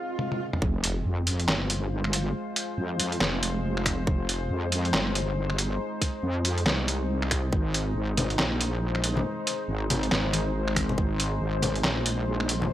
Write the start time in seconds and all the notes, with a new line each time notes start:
Already playing: C4 G#4 D#5, swell
0.19 high tom
0.32 high tom
0.53 mid tom
0.62 F1 G#3 F4 C5, kick, impact
0.84 closed hi-hat
1.05 F2
1.27 closed hi-hat
1.40 closed hi-hat
1.48 G1, snare, clap
1.70 closed hi-hat
2.04 finger snap
2.13 closed hi-hat
2.56 closed hi-hat
2.78 F2
3.00 closed hi-hat
3.12 closed hi-hat
3.21 F1, snare, clap
3.43 closed hi-hat
3.77 finger snap
3.86 finger snap, kick, closed hi-hat
4.07 F1 D#4, kick
4.29 closed hi-hat
4.50 F2
4.72 closed hi-hat
4.85 closed hi-hat
4.93 G1, snare, clap
5.15 closed hi-hat
5.50 finger snap
5.58 closed hi-hat
6.01 kick, closed hi-hat
6.23 F2
6.45 closed hi-hat
6.58 closed hi-hat
6.66 C2, snare, clap
6.88 closed hi-hat
7.22 finger snap
7.31 finger snap, kick, closed hi-hat
7.53 G#1 G#3 C5, kick
7.74 closed hi-hat
7.95 G#1
8.17 closed hi-hat, low conga
8.30 closed hi-hat
8.39 A#1, snare, clap
8.61 closed hi-hat
8.95 finger snap
9.04 closed hi-hat
9.16 high conga, low conga
9.47 closed hi-hat
9.68 G#1
9.90 closed hi-hat, low conga
10.03 closed hi-hat
10.11 G#1, snare, clap
10.33 closed hi-hat, high conga
10.68 finger snap
10.76 finger snap, kick, closed hi-hat, high conga
10.89 low conga
10.98 G#1, kick
11.20 closed hi-hat
11.41 G#1
11.62 closed hi-hat, low conga
11.75 closed hi-hat
11.84 A#1, snare, clap
12.06 closed hi-hat
12.40 finger snap
12.49 closed hi-hat
12.62 high conga, low conga